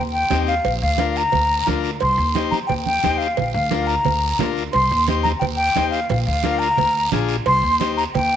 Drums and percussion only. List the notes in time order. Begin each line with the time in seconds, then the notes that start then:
0.30 cowbell, high conga, low timbale, short guiro
0.47 short guiro
0.65 cowbell, high conga, long guiro
0.98 cowbell, high conga, short guiro
1.16 short guiro
1.32 cowbell, high conga, low conga, long guiro
1.67 cowbell, high conga, short guiro
1.84 short guiro
2.00 cowbell, high conga, long guiro
2.35 cowbell, high conga, short guiro
2.52 high conga, short guiro
2.69 cowbell, high conga, low conga, long guiro
2.86 high conga
3.03 cowbell, high conga, short guiro
3.21 short guiro
3.37 cowbell, high conga, low conga, long guiro
3.71 cowbell, high conga, short guiro
3.88 short guiro
4.05 cowbell, high conga, low conga, long guiro
4.39 cowbell, high conga, low conga, low timbale, short guiro
4.57 short guiro
4.73 cowbell, high conga, long guiro
5.08 cowbell, high conga, short guiro
5.25 high conga, short guiro
5.41 cowbell, high conga, low conga, long guiro
5.76 cowbell, high conga, low timbale, short guiro
5.93 short guiro
6.09 cowbell, high conga, low conga, long guiro
6.44 cowbell, high conga, short guiro
6.62 short guiro
6.78 cowbell, high conga, low conga, long guiro
7.12 cowbell, high conga, low conga, short guiro
7.29 short guiro
7.46 cowbell, high conga, long guiro
7.81 cowbell, high conga, short guiro
7.99 short guiro
8.15 cowbell, high conga, low conga, long guiro